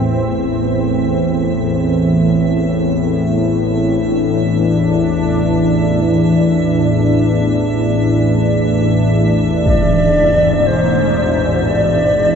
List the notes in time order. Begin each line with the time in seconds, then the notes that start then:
Already playing: A1 E2 A2 E3 C4 E5
3.74 D4
6.02 E3
9.65 G#2 D5, impact
10.28 B2
10.66 C5
11.51 E3
11.69 D5